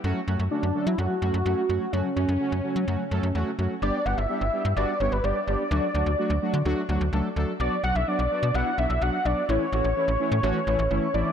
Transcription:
X:1
M:4/4
L:1/16
Q:1/4=127
K:F#phr
V:1 name="Analog synth lead"
z4 D3 E F8 | C2 C12 z2 | d2 f e4- e d2 c B d2 d2- | d8- d2 z6 |
d2 f e d4 f2 e2 f2 d2 | c12- c2 d2 |]
V:2 name="Analog polysynth"
[F,A,CF]2 [F,A,CF]2 [F,A,CF]2 [F,A,CA]2 [F,A,CF]2 [F,A,CF]2 [F,A,CF]2 [F,A,CF]2 | [F,A,CF]2 [F,A,CF]2 [F,A,CF]2 [F,A,CF]2 [F,A,CF]2 [F,A,CA]2 [F,A,CF]2 [F,A,CF]2 | [G,B,DG]2 [G,B,DG]2 [G,B,DG]2 [G,B,DG]2 [G,B,DF]2 [G,B,DG]2 [G,B,DG]2 [G,B,DG]2 | [F,A,DF]2 [F,A,DF]2 [F,A,DF]2 [F,A,DF]2 [F,A,DF]2 [F,A,DF]2 [F,A,DA]2 [F,A,DA]2 |
[F,B,DF]2 [F,B,DF]2 [F,B,DF]2 [F,B,DF]2 [F,B,DE]2 [F,B,DF]2 [F,B,DF]2 [F,B,DF]2 | [E,A,CE]2 [E,A,CF]2 [E,A,CE]2 [E,A,CE]2 [E,A,CF]2 [E,A,CE]2 [E,A,CE]2 [E,A,CE]2 |]
V:3 name="FM bass" clef=bass
F,, z F,, F,, z F,, z F, F,, z F,, F,, F,, z F,, z | F,, z F,, F,, z F,, z F, F,, z F,, F,, E,, z F,, z | G,,, z G,,, G,,, z G,,, z G,, G,,, z G,,, G,,, G,,, z G,,, z | D,, z D,, D,, z D,, z D, D,, z D,, D,, C,, z D,, z |
B,,, z B,,, B,,, z B,,, z B,, B,,, z B,,, B,,, B,,, z B,,, z | A,,, z A,,, A,,, z A,,, z A,, A,,, z A,,, A,,, G,,, z A,,, z |]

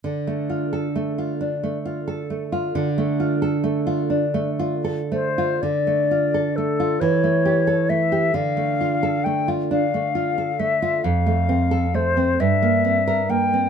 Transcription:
X:1
M:6/8
L:1/16
Q:3/8=44
K:Dm
V:1 name="Flute"
z12 | z8 z2 c2 | d4 A2 ^c4 e2 | f4 g2 f4 e2 |
f4 c2 e4 g2 |]
V:2 name="Nylon-string guitar"
D, A, F A A, F D A, F A A, F | D, A, F A A, F D A, F A A, F | D, A, F A A, F E, A, G A A, G | D, A, F A A, F D A, F A A, F |
F,, A, C A A, C G,, B, C B B, C |]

